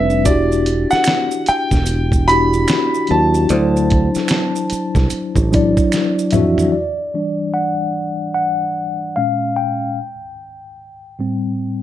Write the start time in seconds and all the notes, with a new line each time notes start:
Already playing: F1 G3 C4 D4 B4 E5
0.10 maracas
0.25 E1 D4 E4 F#4 G4 D5, kick, closed hi-hat, maracas
0.52 maracas
0.66 closed hi-hat, maracas
0.91 F#5, muted fingered electric bass stroke, snare, maracas
1.04 finger snap, snare, closed hi-hat, maracas
1.31 maracas
1.46 G5, muted fingered electric bass stroke, closed hi-hat, maracas
1.71 E1, kick, snare, maracas
1.86 closed hi-hat, maracas
2.12 kick, maracas
2.28 D4 E4 F#4 G4 B5, closed hi-hat, maracas
2.53 maracas
2.68 finger snap, snare, closed hi-hat, maracas
2.94 maracas
3.07 D#2 F#3 D4 A5, closed hi-hat
3.12 E4 F#4
3.34 maracas
3.49 D2 F3 D4 E4 C5, closed hi-hat, maracas
3.55 F#3
3.77 maracas
3.90 kick, closed hi-hat
4.15 muted fingered electric bass stroke, snare, maracas
4.28 finger snap, snare, closed hi-hat, maracas
4.56 maracas
4.70 muted fingered electric bass stroke, closed hi-hat, maracas
4.95 C2, kick, snare, maracas
5.10 muted fingered electric bass stroke, closed hi-hat, maracas
5.36 A1, kick, maracas
5.51 F#3 D4 E4 D5, kick, closed hi-hat, maracas
5.77 kick, maracas
5.92 finger snap, snare, closed hi-hat, maracas
6.19 maracas
6.31 F2 E3 D4 E4 E5, closed hi-hat, mid tom, maracas
6.36 F#4
6.58 floor tom, maracas
6.72 D5
7.14 E3 G3 D4
7.54 F#5
8.35 F#5
9.16 A#2 G#3 C#4 F5
9.56 G5
11.19 A2 G3 C4